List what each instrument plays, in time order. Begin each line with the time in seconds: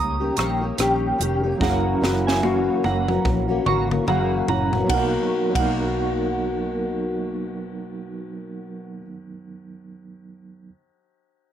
Already playing: fingered electric bass C#2, tine electric piano G3 C#4 D#4 A#4, steel-string acoustic guitar A#3 C#4 G4, synth bell A#5 D#6
0.20 steel-string acoustic guitar A#3 C#4 G4
0.36 fingered electric bass A#1, steel-string acoustic guitar D#3 A#3 C#4 G4, synth bell A#5 C#6, cross-stick, closed hi-hat
0.61 steel-string acoustic guitar A#3 C#4 G4
0.78 fingered electric bass A#1, steel-string acoustic guitar D#3 A#3 C#4 G4, cross-stick, closed hi-hat
1.18 fingered electric bass F1, steel-string acoustic guitar D#3 A#3 C#4 G4, closed hi-hat
1.43 steel-string acoustic guitar A#3 C#4 G4
1.58 fingered electric bass F#1, steel-string acoustic guitar F#2 C#3 E3 A#3 C#4 F#4, tine electric piano F#3 C#4 E4, synth bell F#5 A#5, kick
1.62 tine electric piano G#4, snare
1.70 tine electric piano A#4
2.01 fingered electric bass F#1, steel-string acoustic guitar E3 A#3 C#4 F#4, snare
2.27 synth bell E5 G#5, snare
2.42 steel-string acoustic guitar F#2 C#3 E3 A#3 C#4 F#4, high tom
2.83 fingered electric bass F#1, steel-string acoustic guitar E3 A#3 C#4 F#4, synth bell F#5 A#5, high tom
3.08 steel-string acoustic guitar E3 A#3 C#4 F#4, mid tom
3.25 fingered electric bass A#1, kick, mid tom
3.48 steel-string acoustic guitar E3 A#3 C#4 F#4
3.65 fingered electric bass G#1, steel-string acoustic guitar E3 A#3 C#4 F#4, synth bell A#5 C#6, mid tom
3.90 steel-string acoustic guitar E3 A#3 C#4 F#4, mid tom
4.07 fingered electric bass F#1, steel-string acoustic guitar F#2 C#3 E3 A#3 C#4 F#4, synth bell F#5 A#5, mid tom
4.47 fingered electric bass F#1, steel-string acoustic guitar E3 A#3 C#4 F#4, tine electric piano F#3 C#4 E4 F#4, synth bell F#5 A#5, floor tom
4.72 steel-string acoustic guitar E3 A#3 C#4 F#4, floor tom
4.84 steel-string acoustic guitar B2, tine electric piano F#3 B3
4.90 fingered electric bass B1, steel-string acoustic guitar F#3 A#3, tine electric piano D#4, synth bell F#5, kick, ride
4.94 steel-string acoustic guitar D#4, tine electric piano A#4
4.99 steel-string acoustic guitar F#4
5.50 steel-string acoustic guitar B2, tine electric piano F#3 B3
5.55 fingered electric bass B1, steel-string acoustic guitar F#3 A#3, tine electric piano D#4, synth bell F#5, kick, ride
5.59 steel-string acoustic guitar D#4, tine electric piano A#4
5.64 steel-string acoustic guitar F#4